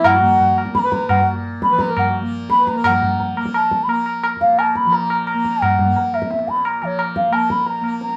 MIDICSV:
0, 0, Header, 1, 5, 480
1, 0, Start_track
1, 0, Tempo, 349243
1, 67, Time_signature, 4, 2, 24, 8
1, 5827, Tempo, 343053
1, 11321, End_track
2, 0, Start_track
2, 0, Title_t, "Bansuri"
2, 0, Program_c, 0, 73
2, 75, Note_on_c, 0, 78, 86
2, 797, Note_off_c, 0, 78, 0
2, 1020, Note_on_c, 0, 83, 96
2, 1082, Note_on_c, 0, 82, 89
2, 1103, Note_off_c, 0, 83, 0
2, 1148, Note_on_c, 0, 83, 93
2, 1168, Note_off_c, 0, 82, 0
2, 1263, Note_on_c, 0, 82, 96
2, 1283, Note_off_c, 0, 83, 0
2, 1495, Note_off_c, 0, 82, 0
2, 1503, Note_on_c, 0, 78, 80
2, 1734, Note_off_c, 0, 78, 0
2, 2235, Note_on_c, 0, 83, 98
2, 2478, Note_on_c, 0, 82, 90
2, 2499, Note_off_c, 0, 83, 0
2, 2720, Note_off_c, 0, 82, 0
2, 2726, Note_on_c, 0, 78, 64
2, 2947, Note_off_c, 0, 78, 0
2, 3436, Note_on_c, 0, 83, 104
2, 3682, Note_on_c, 0, 82, 89
2, 3703, Note_off_c, 0, 83, 0
2, 3916, Note_off_c, 0, 82, 0
2, 3924, Note_on_c, 0, 78, 73
2, 4589, Note_off_c, 0, 78, 0
2, 4879, Note_on_c, 0, 81, 85
2, 5267, Note_on_c, 0, 83, 75
2, 5288, Note_off_c, 0, 81, 0
2, 5345, Note_on_c, 0, 82, 99
2, 5366, Note_off_c, 0, 83, 0
2, 5825, Note_off_c, 0, 82, 0
2, 6062, Note_on_c, 0, 77, 89
2, 6317, Note_on_c, 0, 81, 91
2, 6338, Note_off_c, 0, 77, 0
2, 6552, Note_on_c, 0, 83, 86
2, 6573, Note_off_c, 0, 81, 0
2, 6812, Note_on_c, 0, 82, 101
2, 6833, Note_off_c, 0, 83, 0
2, 7276, Note_off_c, 0, 82, 0
2, 7285, Note_on_c, 0, 82, 96
2, 7769, Note_on_c, 0, 78, 84
2, 7790, Note_off_c, 0, 82, 0
2, 8488, Note_on_c, 0, 76, 74
2, 8509, Note_off_c, 0, 78, 0
2, 8968, Note_on_c, 0, 83, 85
2, 8989, Note_off_c, 0, 76, 0
2, 9222, Note_on_c, 0, 82, 87
2, 9243, Note_off_c, 0, 83, 0
2, 9468, Note_on_c, 0, 73, 70
2, 9489, Note_off_c, 0, 82, 0
2, 9693, Note_off_c, 0, 73, 0
2, 9916, Note_on_c, 0, 77, 79
2, 10153, Note_on_c, 0, 81, 87
2, 10174, Note_off_c, 0, 77, 0
2, 10394, Note_on_c, 0, 83, 78
2, 10415, Note_off_c, 0, 81, 0
2, 10626, Note_on_c, 0, 82, 88
2, 10647, Note_off_c, 0, 83, 0
2, 11103, Note_off_c, 0, 82, 0
2, 11111, Note_on_c, 0, 82, 88
2, 11321, Note_off_c, 0, 82, 0
2, 11321, End_track
3, 0, Start_track
3, 0, Title_t, "Harmonium"
3, 0, Program_c, 1, 20
3, 0, Note_on_c, 1, 64, 65
3, 190, Note_on_c, 1, 66, 68
3, 206, Note_off_c, 1, 64, 0
3, 864, Note_off_c, 1, 66, 0
3, 1159, Note_on_c, 1, 71, 70
3, 1646, Note_on_c, 1, 66, 55
3, 1654, Note_off_c, 1, 71, 0
3, 1866, Note_off_c, 1, 66, 0
3, 2355, Note_on_c, 1, 71, 75
3, 2597, Note_on_c, 1, 70, 65
3, 2605, Note_off_c, 1, 71, 0
3, 2843, Note_on_c, 1, 66, 47
3, 2846, Note_off_c, 1, 70, 0
3, 3065, Note_off_c, 1, 66, 0
3, 3570, Note_on_c, 1, 71, 69
3, 3788, Note_off_c, 1, 71, 0
3, 3801, Note_on_c, 1, 70, 58
3, 4023, Note_off_c, 1, 70, 0
3, 11321, End_track
4, 0, Start_track
4, 0, Title_t, "Tanpura"
4, 0, Program_c, 2, 104
4, 0, Note_on_c, 2, 46, 69
4, 0, Note_on_c, 2, 53, 56
4, 0, Note_on_c, 2, 58, 62
4, 280, Note_off_c, 2, 58, 0
4, 280, Note_on_c, 2, 58, 54
4, 960, Note_off_c, 2, 58, 0
4, 960, Note_on_c, 2, 58, 62
4, 1646, Note_off_c, 2, 46, 0
4, 1651, Note_on_c, 2, 46, 63
4, 2344, Note_off_c, 2, 53, 0
4, 2350, Note_on_c, 2, 53, 58
4, 3036, Note_off_c, 2, 58, 0
4, 3036, Note_on_c, 2, 58, 56
4, 3738, Note_off_c, 2, 58, 0
4, 3738, Note_on_c, 2, 58, 61
4, 3934, Note_off_c, 2, 53, 0
4, 3934, Note_on_c, 2, 53, 61
4, 4612, Note_off_c, 2, 58, 0
4, 4612, Note_on_c, 2, 58, 57
4, 5320, Note_off_c, 2, 58, 0
4, 5320, Note_on_c, 2, 58, 56
4, 5991, Note_off_c, 2, 46, 0
4, 5997, Note_on_c, 2, 46, 57
4, 6684, Note_off_c, 2, 53, 0
4, 6684, Note_on_c, 2, 53, 66
4, 7369, Note_off_c, 2, 58, 0
4, 7369, Note_on_c, 2, 58, 60
4, 8068, Note_off_c, 2, 58, 0
4, 8068, Note_on_c, 2, 58, 59
4, 8744, Note_off_c, 2, 46, 0
4, 8750, Note_on_c, 2, 46, 54
4, 9433, Note_off_c, 2, 53, 0
4, 9438, Note_on_c, 2, 53, 58
4, 10123, Note_off_c, 2, 58, 0
4, 10123, Note_on_c, 2, 58, 59
4, 10824, Note_off_c, 2, 58, 0
4, 10824, Note_on_c, 2, 58, 59
4, 11321, Note_off_c, 2, 46, 0
4, 11321, Note_off_c, 2, 53, 0
4, 11321, Note_off_c, 2, 58, 0
4, 11321, End_track
5, 0, Start_track
5, 0, Title_t, "Tabla"
5, 60, Note_on_c, 9, 60, 110
5, 60, Note_on_c, 9, 64, 93
5, 198, Note_off_c, 9, 60, 0
5, 198, Note_off_c, 9, 64, 0
5, 314, Note_on_c, 9, 64, 73
5, 451, Note_off_c, 9, 64, 0
5, 548, Note_on_c, 9, 63, 70
5, 548, Note_on_c, 9, 64, 60
5, 685, Note_off_c, 9, 63, 0
5, 685, Note_off_c, 9, 64, 0
5, 796, Note_on_c, 9, 60, 60
5, 903, Note_on_c, 9, 37, 60
5, 933, Note_off_c, 9, 60, 0
5, 1028, Note_off_c, 9, 37, 0
5, 1028, Note_on_c, 9, 37, 74
5, 1166, Note_off_c, 9, 37, 0
5, 1265, Note_on_c, 9, 37, 75
5, 1403, Note_off_c, 9, 37, 0
5, 1501, Note_on_c, 9, 60, 92
5, 1501, Note_on_c, 9, 64, 78
5, 1639, Note_off_c, 9, 60, 0
5, 1639, Note_off_c, 9, 64, 0
5, 2227, Note_on_c, 9, 37, 67
5, 2364, Note_off_c, 9, 37, 0
5, 2456, Note_on_c, 9, 37, 75
5, 2594, Note_off_c, 9, 37, 0
5, 2702, Note_on_c, 9, 60, 86
5, 2702, Note_on_c, 9, 64, 85
5, 2840, Note_off_c, 9, 60, 0
5, 2840, Note_off_c, 9, 64, 0
5, 3430, Note_on_c, 9, 37, 77
5, 3567, Note_off_c, 9, 37, 0
5, 3671, Note_on_c, 9, 37, 72
5, 3809, Note_off_c, 9, 37, 0
5, 3906, Note_on_c, 9, 60, 109
5, 3906, Note_on_c, 9, 64, 87
5, 4043, Note_off_c, 9, 60, 0
5, 4043, Note_off_c, 9, 64, 0
5, 4157, Note_on_c, 9, 64, 66
5, 4294, Note_off_c, 9, 64, 0
5, 4395, Note_on_c, 9, 63, 62
5, 4395, Note_on_c, 9, 64, 64
5, 4533, Note_off_c, 9, 63, 0
5, 4533, Note_off_c, 9, 64, 0
5, 4634, Note_on_c, 9, 60, 53
5, 4750, Note_on_c, 9, 37, 50
5, 4771, Note_off_c, 9, 60, 0
5, 4870, Note_on_c, 9, 60, 72
5, 4887, Note_off_c, 9, 37, 0
5, 5008, Note_off_c, 9, 60, 0
5, 5105, Note_on_c, 9, 37, 54
5, 5243, Note_off_c, 9, 37, 0
5, 5346, Note_on_c, 9, 60, 63
5, 5484, Note_off_c, 9, 60, 0
5, 5579, Note_on_c, 9, 60, 55
5, 5717, Note_off_c, 9, 60, 0
5, 5820, Note_on_c, 9, 60, 79
5, 5960, Note_off_c, 9, 60, 0
5, 6067, Note_on_c, 9, 37, 59
5, 6207, Note_off_c, 9, 37, 0
5, 6312, Note_on_c, 9, 60, 68
5, 6452, Note_off_c, 9, 60, 0
5, 6548, Note_on_c, 9, 37, 58
5, 6688, Note_off_c, 9, 37, 0
5, 6783, Note_on_c, 9, 63, 72
5, 6923, Note_off_c, 9, 63, 0
5, 7033, Note_on_c, 9, 60, 60
5, 7173, Note_off_c, 9, 60, 0
5, 7270, Note_on_c, 9, 60, 75
5, 7410, Note_off_c, 9, 60, 0
5, 7517, Note_on_c, 9, 37, 52
5, 7657, Note_off_c, 9, 37, 0
5, 7763, Note_on_c, 9, 60, 99
5, 7763, Note_on_c, 9, 64, 100
5, 7903, Note_off_c, 9, 60, 0
5, 7903, Note_off_c, 9, 64, 0
5, 7999, Note_on_c, 9, 64, 71
5, 8139, Note_off_c, 9, 64, 0
5, 8240, Note_on_c, 9, 63, 71
5, 8240, Note_on_c, 9, 64, 60
5, 8380, Note_off_c, 9, 63, 0
5, 8380, Note_off_c, 9, 64, 0
5, 8484, Note_on_c, 9, 60, 56
5, 8597, Note_on_c, 9, 37, 56
5, 8624, Note_off_c, 9, 60, 0
5, 8719, Note_on_c, 9, 62, 70
5, 8737, Note_off_c, 9, 37, 0
5, 8835, Note_off_c, 9, 62, 0
5, 8835, Note_on_c, 9, 62, 63
5, 8963, Note_on_c, 9, 37, 49
5, 8975, Note_off_c, 9, 62, 0
5, 9076, Note_on_c, 9, 62, 61
5, 9103, Note_off_c, 9, 37, 0
5, 9201, Note_on_c, 9, 60, 78
5, 9215, Note_off_c, 9, 62, 0
5, 9341, Note_off_c, 9, 60, 0
5, 9435, Note_on_c, 9, 60, 58
5, 9575, Note_off_c, 9, 60, 0
5, 9673, Note_on_c, 9, 60, 72
5, 9813, Note_off_c, 9, 60, 0
5, 9913, Note_on_c, 9, 37, 60
5, 10053, Note_off_c, 9, 37, 0
5, 10145, Note_on_c, 9, 60, 71
5, 10284, Note_off_c, 9, 60, 0
5, 10390, Note_on_c, 9, 37, 59
5, 10530, Note_off_c, 9, 37, 0
5, 10619, Note_on_c, 9, 63, 70
5, 10759, Note_off_c, 9, 63, 0
5, 10861, Note_on_c, 9, 60, 53
5, 11001, Note_off_c, 9, 60, 0
5, 11104, Note_on_c, 9, 62, 64
5, 11218, Note_off_c, 9, 62, 0
5, 11218, Note_on_c, 9, 62, 61
5, 11321, Note_off_c, 9, 62, 0
5, 11321, End_track
0, 0, End_of_file